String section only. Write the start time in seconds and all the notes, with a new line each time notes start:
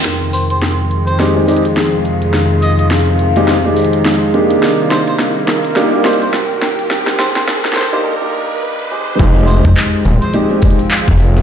0.05 F2 C3 D#3 G#3
4.63 C2 A#3
6.91 C4
9.20 D#3 F3 G#3 C4